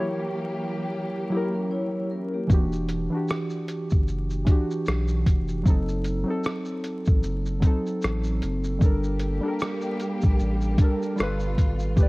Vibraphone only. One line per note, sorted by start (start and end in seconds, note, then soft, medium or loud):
1.32 1.53 A#3 medium
1.32 1.53 G4 medium
1.54 1.71 C#4 medium
1.54 1.70 A#4 medium
1.71 2.09 E4 medium
1.71 2.09 C#5 medium
2.11 2.32 C#4 medium
2.11 2.32 A#4 medium
2.34 2.71 A#3 medium
2.34 2.71 G4 medium